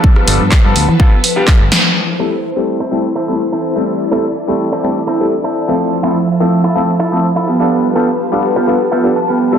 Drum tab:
HH |--o---o---o---o-|----------------|----------------|----------------|
CP |----x-------x---|----------------|----------------|----------------|
SD |-r------------o-|----------------|----------------|----------------|
BD |o---o---o---o---|----------------|----------------|----------------|

HH |----------------|
CP |----------------|
SD |----------------|
BD |----------------|